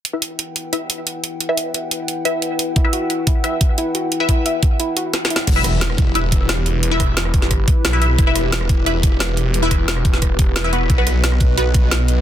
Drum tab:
CC |------------------------------------------------|------------------------------------------------|------------------------------------------------|------------------------------------------------|
HH |x-----x-----x-----x-----x-----x-----x-----x-----|x-----x-----x-----x-----x-----x-----x-----x-----|x-----x-----x-----x-----x-----x-----x-----x-----|x-----x-----x-----x-----x-----x-----x-----x-----|
SD |------------------------------------------------|------------------------------------------------|------------------------------------------------|------------------------------------o---o---o---|
BD |------------------------------------------------|------------------------------------------------|o-----------------o-----------o-----------------|------o-----------o-----------------------------|

CC |x-----------------------------------------------|------------------------------------------------|------------------------------------------------|------------------------------------------------|
HH |x-----x-----x-----o-----x-----x-----x-----o-----|x-----x-----x-----o-----x-----x-----x-----o-----|x-----x-----x-----o-----x-----x-----x-----o-----|x-----x-----x-----o-----x-----x-----x-----o-----|
SD |------r-----o--r--------------------o-----------|------r-----o--r-----o--r-----------o-----------|------r-----o--r--------------------o-----------|------r-----o--r-----o--r-----------o-----------|
BD |o-----------------o-----------o-----------------|------o-----------o-----o-----o-----------------|o-----------------o-----------o-----------------|------o-----------o-----o-----o-----------------|

CC |------------------------------------------------|
HH |x-----x-----x-----o-----x-----x-----x-----o-----|
SD |------r-----o--r--------------------o-----------|
BD |o-----------------o-----------o-----------------|